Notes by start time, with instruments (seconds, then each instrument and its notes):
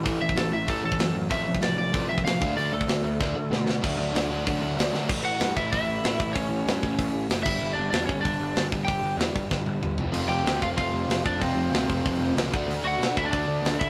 0.05 picked electric bass A1, overdriven electric guitar A2 E3 A3, kick, open hi-hat
0.21 picked electric bass A1, overdriven electric guitar A2 E3, lead electric guitar E5
0.29 kick
0.35 picked electric bass A1, overdriven electric guitar A2 E3, lead electric guitar A4, snare, open hi-hat
0.51 picked electric bass A1, overdriven electric guitar A2 E3, lead electric guitar E5
0.66 picked electric bass A1, overdriven electric guitar A2 E3 A3, lead electric guitar A4, kick, open hi-hat
0.82 picked electric bass A1, overdriven electric guitar A2 E3, lead electric guitar A4
0.92 kick
0.99 picked electric bass F#2, overdriven electric guitar A2 E3, snare, open hi-hat
1.13 overdriven electric guitar A2 E3
1.29 picked electric bass A1, overdriven electric guitar F2 A2 C3 F3 A3, lead electric guitar E5, kick, open hi-hat
1.45 overdriven electric guitar F2 A2 C3 F3
1.55 kick
1.60 picked electric bass A1, overdriven electric guitar F2 A2 C3 F3, lead electric guitar D5, snare, open hi-hat
1.77 overdriven electric guitar F2 A2 C3 F3, lead electric guitar D5
1.92 picked electric bass A1, overdriven electric guitar F2 A2 C3 F3 A3, kick, open hi-hat
2.09 overdriven electric guitar F2 A2 C3 F3, lead electric guitar E5
2.18 kick
2.24 picked electric bass A1, overdriven electric guitar F2 A2 C3 F3, lead electric guitar F5, snare, open hi-hat
2.41 picked electric bass D2, overdriven electric guitar D3 A3 D4, kick
2.57 picked electric bass D2, overdriven electric guitar D3 A3 D4, lead electric guitar D5, open hi-hat
2.73 picked electric bass D2, overdriven electric guitar D3 A3, lead electric guitar A4
2.81 kick
2.87 picked electric bass D2, overdriven electric guitar D3 A3, snare, open hi-hat
3.02 picked electric bass D2, overdriven electric guitar D3 A3
3.20 picked electric bass D2, overdriven electric guitar D3 A3 D4, kick, snare
3.35 picked electric bass D2, overdriven electric guitar D3 A3
3.50 picked electric bass B2, overdriven electric guitar D3 A3, snare
3.67 overdriven electric guitar D3 A3, snare
3.81 picked electric bass D2, overdriven electric guitar D3 F#3 A3 D4 F#4, kick, crash
3.97 picked electric bass D2, overdriven electric guitar D3 F#3 A3 D4 F#4
4.13 picked electric bass D2, overdriven electric guitar D3 F#3 A3 D4 F#4, snare, open hi-hat
4.29 overdriven electric guitar D3 F#3 A3 D4 F#4
4.45 overdriven electric guitar D3 F#3 A3 D4 F#4, picked electric bass D3, kick, open hi-hat
4.61 picked electric bass D2, overdriven electric guitar D3 F#3 A3 D4 F#4
4.76 picked electric bass D2, overdriven electric guitar D3 F#3 A3 D4 F#4, snare, open hi-hat
4.92 picked electric bass D2, overdriven electric guitar D3 F#3 A3 D4 F#4, snare
5.09 picked electric bass A1, overdriven electric guitar A2 E3 A3, kick, crash
5.23 picked electric bass A1, lead electric guitar F#4 F#5
5.40 picked electric bass G2, snare, open hi-hat
5.56 picked electric bass A1, overdriven electric guitar E3 A3, lead electric guitar E4 E5, kick
5.60 overdriven electric guitar A2
5.72 picked electric bass A1, lead electric guitar E4 E5, kick, open hi-hat
5.87 picked electric bass A1
6.02 picked electric bass A1, snare, open hi-hat
6.20 picked electric bass A1, kick
6.33 picked electric bass A1, overdriven electric guitar A2 E3, lead electric guitar C#4 C#5, kick, open hi-hat
6.38 overdriven electric guitar A3
6.49 picked electric bass A1
6.66 picked electric bass G2, snare, open hi-hat
6.82 picked electric bass A1, overdriven electric guitar A2 E3 A3, kick
6.99 picked electric bass A1, kick, open hi-hat
7.13 picked electric bass A1
7.29 picked electric bass F#1, snare, open hi-hat
7.43 picked electric bass G1, overdriven electric guitar G2 D3, lead electric guitar E4 E5, kick, crash
7.47 overdriven electric guitar G3
7.60 picked electric bass G1
7.73 picked electric bass G1, lead electric guitar D4 D5
7.90 picked electric bass E2, overdriven electric guitar G2, lead electric guitar D4 D5, snare, open hi-hat
7.95 overdriven electric guitar D3 G3
8.06 picked electric bass G1, lead electric guitar C#4 C#5, kick
8.21 lead electric guitar D4 D5
8.25 picked electric bass G1, kick, open hi-hat
8.40 picked electric bass G1
8.56 picked electric bass G1, snare, open hi-hat
8.71 picked electric bass G1, overdriven electric guitar G2 D3 G3, kick
8.85 picked electric bass G1, lead electric guitar G4 G5, kick, open hi-hat
9.03 picked electric bass G1
9.17 picked electric bass E2, overdriven electric guitar G2 D3, snare, open hi-hat
9.21 overdriven electric guitar G3
9.35 picked electric bass G1, kick
9.50 picked electric bass G1, kick, snare
9.66 picked electric bass G1, high tom
9.80 picked electric bass G1, mid tom
9.97 picked electric bass F1, overdriven electric guitar F2 C3, floor tom
10.02 overdriven electric guitar F3
10.12 picked electric bass F1, overdriven electric guitar F3 A3 C4 F4, open hi-hat, crash
10.29 picked electric bass F1, lead electric guitar G4 G5
10.44 picked electric bass D2, overdriven electric guitar F2 C3, snare, open hi-hat
10.49 overdriven electric guitar F3
10.62 picked electric bass F1, lead electric guitar F4 F5, kick
10.77 picked electric bass F1, lead electric guitar F4 F5, kick, open hi-hat
10.92 picked electric bass F1
11.08 picked electric bass F1, snare, open hi-hat
11.24 picked electric bass F1, overdriven electric guitar F2 C3 F3, lead electric guitar D4 D5, kick
11.39 picked electric bass F1, overdriven electric guitar F3 A3 C4 F4, lead electric guitar C4 C5, kick, open hi-hat
11.55 picked electric bass F1
11.72 picked electric bass D2, overdriven electric guitar F2 C3 F3, snare, open hi-hat
11.89 picked electric bass F1, kick
12.06 picked electric bass F1, kick, open hi-hat
12.19 picked electric bass F1
12.36 picked electric bass C#2, snare, open hi-hat
12.53 picked electric bass D2, overdriven electric guitar D3 A3 D4 F#4, kick
12.67 picked electric bass D2, open hi-hat
12.83 picked electric bass D2, lead electric guitar F#4
12.87 lead electric guitar F#5
12.98 picked electric bass B2, overdriven electric guitar D3 A3, open hi-hat
13.03 overdriven electric guitar D4, snare
13.16 picked electric bass D2, lead electric guitar E4 E5, kick
13.24 lead electric guitar D4 D5
13.31 picked electric bass D2, lead electric guitar D4 D5, kick, open hi-hat
13.47 picked electric bass D2
13.62 picked electric bass D2, snare, open hi-hat
13.79 picked electric bass D2, lead electric guitar E4 E5, kick